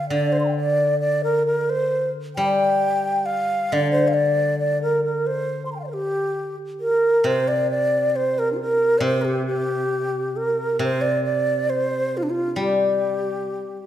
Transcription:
0.09 guzheng D3, xiao D5
0.32 xiao C5
0.40 xiao C6
0.45 xiao G5 A#5
0.53 xiao D5 F5
1.00 xiao D5
1.24 xiao A#4
1.46 xiao A#4
1.70 xiao C5
2.36 guzheng G3, xiao G5
3.26 xiao F5
3.72 guzheng D3, xiao D5
3.92 xiao C5
4.08 xiao F5
4.14 xiao D5
4.59 xiao D5
4.82 xiao A#4
5.04 xiao A#4
5.27 xiao C5
5.66 xiao C6
5.72 xiao G5 A#5
5.80 xiao F5
5.84 xiao C5 D5
5.91 xiao G4 A#4
6.80 xiao A#4
7.24 guzheng C3, xiao C5
7.48 xiao D5
7.71 xiao D5
8.10 xiao D5
8.16 xiao C5
8.39 xiao A#4
8.52 xiao D4 F4
8.58 xiao G4 A#4
8.99 guzheng C3, xiao D5
9.04 xiao C5
9.22 xiao G4 A#4
9.46 xiao G4
10.36 xiao A#4
10.79 guzheng C3, xiao C5
11.01 xiao D5
11.24 xiao D5
11.70 xiao C5
12.17 xiao F4
12.23 xiao D4
12.30 xiao F4
12.56 guzheng G3, xiao G4

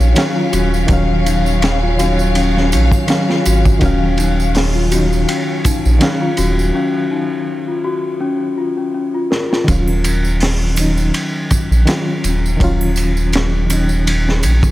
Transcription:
Already playing: reed electric piano D#3 F#3 C#4 D#4 F4, string section F#3 C#4 F5, celesta C#4 D#4 F4 F#4
0.00 analog synth bass A#1, tambourine
0.15 reed electric piano D#3 F#3 C#4 F5, snare, ride, tambourine
0.36 celesta F4
0.52 analog synth bass D#1, celesta F#4, ride, tambourine
0.74 tambourine
0.87 analog synth bass D#1, reed electric piano D#3 F#3, celesta C#4, kick, ride, tambourine
0.91 reed electric piano C#4 F5
1.26 celesta D#4, ride, tambourine
1.46 tambourine
1.62 snare, ride, tambourine
1.82 celesta F4
1.97 reed electric piano D#3 F#3, celesta F#4, ride, tambourine
2.01 reed electric piano C#4 D#4
2.19 tambourine
2.35 celesta C#4, ride, tambourine
2.57 snare
2.72 analog synth bass A#1, celesta D#4, ride, tambourine
2.92 kick, tambourine, triangle
3.07 reed electric piano D#3 F#3 C#4 F5, snare, ride, tambourine
3.29 celesta F4, snare
3.45 analog synth bass G#1, celesta F#4, ride, tambourine
3.65 kick, tambourine
3.79 analog synth bass D#1, reed electric piano D#3 F#3, celesta C#4, kick, ride, tambourine
3.84 reed electric piano C#4 F5
4.18 celesta D#4, ride, tambourine
4.40 tambourine
4.55 snare, open hi-hat, tambourine
4.75 celesta F4
4.88 reed electric piano D#3 F#3, celesta F#4, ride, tambourine
4.93 reed electric piano C#4 D#4
5.13 tambourine
5.28 celesta C#4, ride, tambourine
5.65 celesta D#4, kick, ride, tambourine, triangle
5.85 analog synth bass A#1, tambourine
5.99 reed electric piano D#3 F#3 C#4 F5, snare, ride, tambourine
6.21 celesta F4
6.37 analog synth bass D#1, celesta F#4, ride, tambourine
6.59 tambourine
6.75 celesta C#4
7.11 celesta D#4
7.68 celesta F4
7.84 celesta F#4
8.20 celesta C#4
8.58 celesta F4
8.78 celesta C#4
8.94 celesta C#4
9.14 celesta F4
9.31 celesta A#4, snare
9.50 celesta F4, snare
9.64 reed electric piano D#3 F#3, kick, ride
9.68 analog synth bass D#1, reed electric piano C#4 F4, tambourine
9.88 triangle
10.04 ride, tambourine
10.25 tambourine
10.40 snare, open hi-hat, tambourine
10.74 reed electric piano D#3 F#3, ride, tambourine, triangle
10.79 reed electric piano C#4 D#4
10.97 tambourine
11.14 ride, tambourine
11.51 kick, ride, tambourine, triangle
11.71 analog synth bass A#1, tambourine
11.86 reed electric piano D#3 F#3 C#4 F4, snare, ride, tambourine
12.24 analog synth bass D#1, ride, tambourine
12.46 tambourine
12.57 analog synth bass D#1, reed electric piano D#3 F#3, kick, ride, tambourine
12.62 reed electric piano C#4 F4
12.81 triangle
12.96 ride, tambourine
13.17 tambourine
13.32 snare, ride, tambourine
13.66 reed electric piano D#3 F#3, ride, tambourine, triangle
13.71 reed electric piano C#4 D#4
13.89 tambourine
14.07 ride, tambourine
14.29 snare
14.43 analog synth bass A#1, ride, tambourine
14.63 kick, tambourine

